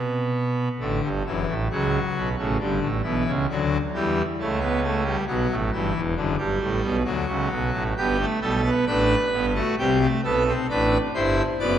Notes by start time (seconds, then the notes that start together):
Already playing: B2
0.79 A1 A2 D3
1.02 G1 G2
1.25 F#1 F#2 E3
1.48 A1 A2
1.71 C#2 C#3 F#3
2.16 B1 B2
2.38 A1 A2 C#3
2.59 G1 G2 D3
2.81 A1 A2
3.03 B1 B2 E3
3.26 C#2 C#3
3.50 D2 D3 F#3
3.94 E2 E3 G3
4.39 C#2 C#3 A3
4.60 B3
4.84 A3
5.04 G3
5.26 B1 B2 F#3
5.51 A1 A2
5.72 G1 G2 E3
5.94 E1 E2
6.15 F#1 F#2 D3
6.38 G1 G2 G3
6.61 A1 A2
6.82 B1 B2
7.04 D2 D3 F#3
7.27 C#2 C#3
7.50 B1 B2
7.73 A1 A2
7.97 G1 G2 B3 G4
8.20 A3
8.41 B1 B2 G3 A4
8.65 B3
8.86 A1 A2 D4 B4
9.32 G1 G2 B3
9.55 A3 F#4
9.79 C2 C3 G3 G4
10.01 A3
10.24 B1 B2 B3 A4
10.48 C4
10.69 A1 A2 D4 B4
11.14 G1 G2 E4 C5
11.60 F#1 F#2 B3 D5